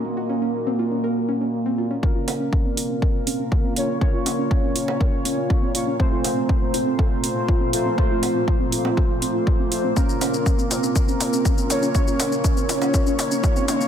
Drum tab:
HH |----------------|--o---o---o---o-|--o---o---o---o-|--o---o---o---o-|
SH |----------------|----------------|----------------|----------------|
T2 |----------------|o---o---o---o---|o---o---o---o---|o---o---o---o---|
CG |----------------|--O-------------|--O----O--------|--O-------------|
BD |----------------|o---o---o---o---|o---o---o---o---|o---o---o---o---|

HH |--o---o---o---o-|--o---o---o---o-|--o---o---o---o-|
SH |----------------|xxxxxxxxxxxxxxxx|xxxxxxxxxxxxxxxx|
T2 |o---o---o---o---|o-o-o-o-o-o-o-o-|o-o-o-o-o-o-o-o-|
CG |--O----O--------|--O-------------|--O----O--------|
BD |o---o---o---o---|o---o---o---o---|o---o---o---o---|